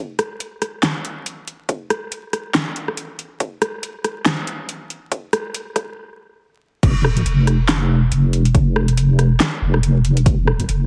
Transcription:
0.19 cross-stick medium
0.19 closed hi-hat medium
0.40 closed hi-hat medium
0.62 cross-stick soft
0.62 closed hi-hat medium
0.83 snare loud
0.83 clap medium
0.83 closed hi-hat medium
1.05 closed hi-hat medium
1.26 closed hi-hat medium
1.47 closed hi-hat medium
1.69 kick loud
1.69 closed hi-hat medium
1.90 cross-stick medium
1.90 closed hi-hat medium
2.12 closed hi-hat medium
2.33 cross-stick soft
2.33 closed hi-hat medium
2.55 snare loud
2.55 clap medium
2.55 closed hi-hat medium
2.76 closed hi-hat medium
2.88 cross-stick soft
2.97 closed hi-hat medium
3.19 closed hi-hat medium
3.40 kick loud
3.40 closed hi-hat medium
3.62 cross-stick medium
3.62 closed hi-hat medium
3.83 closed hi-hat medium
4.05 cross-stick medium
4.05 closed hi-hat medium
4.26 snare loud
4.26 clap medium
4.26 closed hi-hat medium
4.47 closed hi-hat medium
4.69 closed hi-hat medium
4.90 closed hi-hat medium
5.12 kick loud
5.12 closed hi-hat medium
5.33 cross-stick medium
5.33 closed hi-hat medium
5.54 closed hi-hat medium
5.76 kick medium
5.76 cross-stick medium
5.76 closed hi-hat medium
6.83 7.25 F1 loud
6.83 kick loud
6.83 closed hi-hat medium
6.83 crash loud
7.04 cross-stick medium
7.17 closed hi-hat medium
7.26 8.10 F1 loud
7.26 closed hi-hat medium
7.47 cross-stick soft
7.47 closed hi-hat medium
7.69 snare loud
7.69 clap medium
7.69 closed hi-hat medium
8.12 9.39 F1 loud
8.12 closed hi-hat medium
8.33 closed hi-hat medium
8.45 closed hi-hat medium
8.55 kick loud
8.55 closed hi-hat medium
8.76 cross-stick medium
8.88 closed hi-hat medium
8.97 closed hi-hat medium
9.19 cross-stick medium
9.19 closed hi-hat medium
9.40 snare loud
9.40 clap medium
9.40 closed hi-hat medium
9.62 10.24 F1 loud
9.74 cross-stick medium
9.83 closed hi-hat medium
10.05 closed hi-hat medium
10.17 closed hi-hat medium
10.26 10.67 F1 loud
10.26 kick loud
10.26 closed hi-hat medium
10.47 cross-stick medium
10.60 closed hi-hat medium
10.69 10.87 F1 loud
10.69 closed hi-hat medium

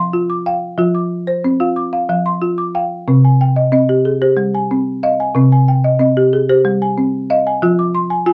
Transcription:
0.00 0.30 F5 medium
0.00 0.46 C6 medium
0.13 0.46 F4 medium
0.29 0.79 D6 medium
0.46 0.79 F5 medium
0.46 0.95 G5 medium
0.78 1.28 F3 medium
0.78 1.11 F4 medium
0.94 1.44 D6 soft
1.27 1.60 C5 medium
1.44 1.94 C4 medium
1.60 1.93 F4 medium
1.60 1.92 F5 medium
1.76 2.25 D6 medium
1.93 2.08 F5 medium
2.09 2.34 F3 medium
2.09 2.58 F5 medium
2.26 2.74 C6 medium
2.42 2.74 F4 medium
2.58 3.07 D6 medium
2.75 3.07 F5 medium
2.75 3.23 G5 medium
3.08 3.57 C3 medium
3.08 3.40 C4 medium
3.24 3.73 G#5 soft
3.41 3.89 G5 medium
3.56 3.72 D#5 medium
3.72 4.22 C4 medium
3.72 4.21 D#5 medium
3.89 4.21 G4 medium
4.05 4.53 G#4 medium
4.22 4.54 G4 medium
4.22 4.70 C5 medium
4.37 5.11 G3 medium
4.55 5.03 G#5 medium
4.71 5.03 C4 medium
5.03 5.35 D#5 medium
5.03 5.51 F5 medium
5.20 5.51 G#5 medium
5.35 5.84 C3 medium
5.35 5.68 C4 medium
5.52 6.00 G#5 medium
5.68 6.16 G5 medium
5.85 6.00 D#5 medium
6.00 6.49 C4 medium
6.00 6.49 D#5 medium
6.17 6.48 G4 medium
6.33 6.81 G#4 medium
6.49 6.81 G4 medium
6.49 6.97 C5 medium
6.65 7.39 G3 medium
6.82 7.30 G#5 medium
6.97 7.29 C4 medium
7.30 7.62 D#5 medium
7.30 7.78 F5 medium
7.47 7.78 G#5 medium
7.62 8.11 F3 medium
7.62 7.95 F4 medium
7.79 8.27 D6 medium
7.95 8.33 C6 medium
8.10 8.26 G#5 medium
8.26 8.33 F4 medium
8.26 8.33 G#5 medium

